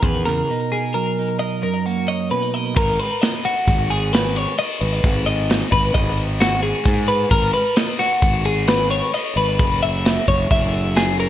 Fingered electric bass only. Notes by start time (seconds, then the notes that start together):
0.03 E2
2.76 G#1
3.67 G#1
4.81 G#1
5.04 G#1
5.72 G#1
5.95 G#1
6.85 G#2
7.31 G#1
8.22 G#1
9.36 G#1
9.59 F#1
10.28 F#1
10.51 F#1